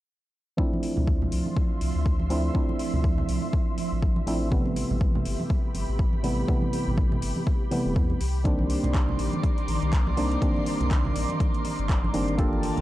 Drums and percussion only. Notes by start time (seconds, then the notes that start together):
0.58 kick
0.73 high conga
0.83 open hi-hat
0.97 low conga
1.07 kick
1.22 low conga
1.32 open hi-hat
1.46 high conga
1.57 kick
1.81 open hi-hat, high conga
2.06 kick
2.20 high conga
2.30 open hi-hat
2.55 kick
2.69 high conga
2.80 open hi-hat
2.94 low conga
3.03 kick, high conga
3.18 low conga
3.29 open hi-hat
3.42 high conga
3.53 kick
3.78 open hi-hat, high conga
4.02 kick
4.16 high conga
4.27 open hi-hat
4.52 kick
4.65 high conga
4.76 open hi-hat
4.91 low conga
5.01 kick, high conga
5.15 low conga
5.25 open hi-hat
5.40 high conga
5.50 kick
5.74 open hi-hat, high conga
5.99 kick
6.13 high conga
6.24 open hi-hat
6.48 kick
6.62 high conga
6.73 open hi-hat
6.88 low conga
6.97 kick, high conga
7.12 low conga
7.22 open hi-hat
7.36 high conga
7.47 kick
7.71 open hi-hat, high conga
7.96 kick
8.10 high conga
8.21 open hi-hat
8.45 kick, closed hi-hat
8.59 high conga
8.70 open hi-hat
8.83 closed hi-hat, low conga
8.94 kick, clap, closed hi-hat, high conga
9.09 low conga
9.19 open hi-hat
9.33 closed hi-hat, high conga
9.44 kick, closed hi-hat
9.58 closed hi-hat
9.68 open hi-hat, high conga
9.82 closed hi-hat
9.93 kick, clap, closed hi-hat
10.07 high conga
10.17 open hi-hat
10.31 closed hi-hat
10.42 kick, closed hi-hat
10.56 high conga
10.66 open hi-hat
10.81 closed hi-hat, low conga
10.91 kick, clap, closed hi-hat, high conga
11.05 low conga
11.16 open hi-hat
11.29 closed hi-hat, high conga
11.40 kick, closed hi-hat
11.54 closed hi-hat
11.64 open hi-hat, high conga
11.79 closed hi-hat
11.89 kick, clap, closed hi-hat
12.04 high conga
12.14 open hi-hat
12.28 closed hi-hat
12.38 kick, closed hi-hat
12.53 high conga
12.63 open hi-hat
12.77 closed hi-hat, low conga